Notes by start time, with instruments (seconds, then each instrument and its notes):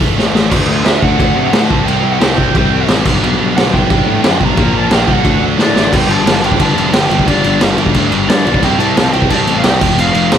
0.00 picked electric bass E1, overdriven electric guitar A2 E3 A3, kick, open hi-hat
0.16 picked electric bass A1, overdriven electric guitar A2 E3 A3, snare
0.33 picked electric bass A1, overdriven electric guitar A2 E3 A3, snare
0.51 picked electric bass D2, overdriven electric guitar D3 A3 D4, distorted electric guitar F#3, kick, crash
0.68 picked electric bass D2
0.84 picked electric bass D2, overdriven electric guitar D3 A3 D4, distorted electric guitar F#3, lead electric guitar E5, snare, crash
1.02 picked electric bass D2, overdriven electric guitar D3 A3 D4, distorted electric guitar F#3, lead electric guitar F#5, kick
1.19 picked electric bass D2, overdriven electric guitar D3 A3 D4, distorted electric guitar F#3, kick, crash
1.36 picked electric bass C3
1.52 picked electric bass A2, overdriven electric guitar D3 A3 D4, distorted electric guitar F#3, snare, crash
1.66 lead electric guitar A5
1.70 picked electric bass C2, overdriven electric guitar C3 G3 C4, distorted electric guitar E4, kick
1.85 picked electric bass C2, overdriven electric guitar C3 G3 C4, distorted electric guitar E4, lead electric guitar G5, crash
2.04 picked electric bass C2
2.12 lead electric guitar F#5
2.19 picked electric bass C2, overdriven electric guitar G3 C4, distorted electric guitar E4, lead electric guitar G5, snare, crash
2.23 overdriven electric guitar C3
2.37 picked electric bass C2, overdriven electric guitar C3 G3 C4, distorted electric guitar E4, kick
2.54 picked electric bass C2, overdriven electric guitar C3 G3 C4, distorted electric guitar E4, kick, crash
2.72 picked electric bass C2
2.88 picked electric bass A1, overdriven electric guitar C3 G3 C4, distorted electric guitar E4, snare, crash
3.05 picked electric bass B1, overdriven electric guitar G2 D3 G3, distorted electric guitar B2 B3 D4, kick, crash
3.22 picked electric bass B1, overdriven electric guitar G2 D3 G3, distorted electric guitar B2 B3 D4, crash
3.40 picked electric bass B1
3.57 picked electric bass B1, overdriven electric guitar G2 D3 G3, distorted electric guitar B2 B3 D4, lead electric guitar F#5, snare, crash
3.73 picked electric bass B1, overdriven electric guitar G2 D3 G3, distorted electric guitar B2 B3 D4, lead electric guitar G5, kick
3.90 picked electric bass B1, overdriven electric guitar G2 D3 G3, distorted electric guitar B2 B3 D4, kick, crash
4.06 picked electric bass A2
4.24 picked electric bass F#2, overdriven electric guitar G2 D3 G3, distorted electric guitar B2 B3 D4, snare, crash
4.41 picked electric bass B1, overdriven electric guitar G2 D3 G3, distorted electric guitar B2 B3 D4, kick
4.45 lead electric guitar A#5
4.56 picked electric bass A#1, overdriven electric guitar A#2 F3 A#3, distorted electric guitar D3 D4, kick, crash
4.73 picked electric bass A#1
4.77 lead electric guitar A5
4.90 picked electric bass A#1, overdriven electric guitar A#2 F3 A#3, distorted electric guitar D3 D4, snare, crash
4.94 lead electric guitar G5
5.07 picked electric bass C2, overdriven electric guitar A#2 F3 A#3, distorted electric guitar D3 D4, kick
5.11 lead electric guitar F#5
5.23 picked electric bass D2, overdriven electric guitar D3 A3 D4, distorted electric guitar F#3, kick, crash
5.41 picked electric bass D2
5.58 picked electric bass A2, overdriven electric guitar D3 A3 D4, distorted electric guitar F#3, lead electric guitar D5, snare
5.75 picked electric bass A1, overdriven electric guitar D3 A3 D4, distorted electric guitar F#3, snare
5.92 picked electric bass G1, overdriven electric guitar G2 D3 G3, distorted electric guitar B3 D4 G4, lead electric guitar G5, kick, crash
6.08 picked electric bass G1, overdriven electric guitar G2 D3 G3, lead electric guitar A5, crash
6.24 picked electric bass G1, overdriven electric guitar G2 D3 G3, snare, crash
6.42 picked electric bass G1, overdriven electric guitar G2 D3 G3, distorted electric guitar B3 D4 G4, lead electric guitar G5, crash
6.52 kick
6.59 picked electric bass G1, overdriven electric guitar G2 D3 G3, lead electric guitar A5, kick, crash
6.75 picked electric bass F1, overdriven electric guitar G2 D3 G3, crash
6.92 picked electric bass G1, overdriven electric guitar G2 D3 G3, lead electric guitar G5, snare, crash
7.10 picked electric bass G1, overdriven electric guitar G2 D3 G3, crash
7.19 kick
7.27 picked electric bass G1, overdriven electric guitar G2 D3 G3, distorted electric guitar B3 D4 G4, lead electric guitar D5, kick, crash
7.44 picked electric bass G1, overdriven electric guitar G2 D3 G3, crash
7.60 picked electric bass G1, overdriven electric guitar G2 D3 G3, snare, crash
7.77 picked electric bass G1, overdriven electric guitar G2 D3 G3, distorted electric guitar B3 D4 G4, crash
7.86 kick
7.94 picked electric bass D2, overdriven electric guitar G2 D3 G3, kick, crash
8.12 picked electric bass G1, overdriven electric guitar G2 D3 G3, crash
8.28 overdriven electric guitar G2 D3 G3, picked electric bass G2, lead electric guitar D5, snare, crash
8.45 picked electric bass B1, overdriven electric guitar G2 D3 G3, crash
8.54 kick
8.62 picked electric bass C2, overdriven electric guitar C3 G3 C4, distorted electric guitar E4 G4, lead electric guitar G5, kick, crash
8.79 picked electric bass C2, overdriven electric guitar C3 G3 C4, lead electric guitar A5, crash
8.96 picked electric bass C2, overdriven electric guitar C3 G3 C4, snare, crash
9.13 picked electric bass C2, overdriven electric guitar C3 G3 C4, distorted electric guitar E4 G4, lead electric guitar G5, crash
9.22 kick
9.30 picked electric bass C2, overdriven electric guitar C3 G3 C4, lead electric guitar A5, kick, crash
9.47 picked electric bass A1, overdriven electric guitar C3 G3 C4, crash
9.58 lead electric guitar F5
9.64 picked electric bass C2, overdriven electric guitar C3 G3 C4, lead electric guitar G5, snare, crash
9.81 picked electric bass F1, overdriven electric guitar F2 C3 F3, distorted electric guitar A3 C4 F4, kick, crash
9.98 picked electric bass F1, overdriven electric guitar F2 C3 F3, lead electric guitar F5, crash
10.14 picked electric bass F1, overdriven electric guitar F2 C3 F3, crash
10.32 picked electric bass F1, overdriven electric guitar F2 C3 F3, distorted electric guitar A3 C4 F4, snare, crash